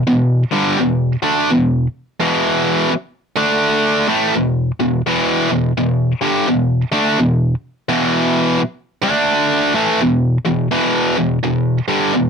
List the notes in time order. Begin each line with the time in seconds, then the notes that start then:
0.07 E2 B2
0.51 G2 D3 G3
0.78 E2 B2
1.22 D3 A3 D4
1.51 E2 B2
2.20 E2 B2 E3
2.93 muted distorted electric guitar stroke
3.37 D3 A3 D4
4.08 A2 E3 A3
4.35 E2 B2
4.80 E2 B2
5.06 E2 B2 E3
5.50 E2 B2
5.78 E2 B2
6.21 G2 D3 G3
6.48 E2 B2
6.92 D3 A3 D4
7.18 E2 B2
7.89 E2 B2 E3
8.59 muted distorted electric guitar stroke
9.03 D3 A3 D4
9.75 A2 E3 A3
10.01 E2 B2
10.45 E2 B2
10.71 E2 B2 E3
11.16 E2 B2
11.44 E2 B2
11.88 G2 D3 G3
12.14 E2 B2